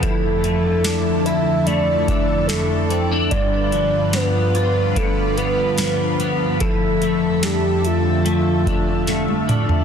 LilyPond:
<<
  \new Staff \with { instrumentName = "Soft synth lead" } { \time 4/4 \key d \dorian \tempo 4 = 73 a'4. e''8 d''4 a'8. r16 | d''4 b'4 a'8 b'4 r8 | a'4 g'8 f'2 r8 | }
  \new Staff \with { instrumentName = "Analog synth pad" } { \time 4/4 \key d \dorian << { <f, e' a'>1 | <g, f' b'>1 | <f, a' e''>1 | } \\ { d1~ | d1 | d1 | } >> }
  \new Staff \with { instrumentName = "Clean electric guitar" } { \time 4/4 \key d \dorian <f e'>8 a8 d'8 e'8 a8 d'8 a8 c'16 d'16 | <g, f'>8 f8 b8 f'8 d8 b8 f8 b8 | <f e'>8 a8 d'4 a8 d'8 a8 d'8 | }
  \new DrumStaff \with { instrumentName = "Drums" } \drummode { \time 4/4 <hh bd>8 hh8 <hh sn>8 hh8 hh8 <hh bd>8 <hh sn>8 hh8 | <hh bd>8 hh8 <hh sn>8 hh8 <hh bd>8 hh8 <hh sn>8 hh8 | <hh bd>8 hh8 <hh sn>8 hh8 hh8 <hh bd>8 <hh sn>16 tommh16 <hh toml>16 tomfh16 | }
>>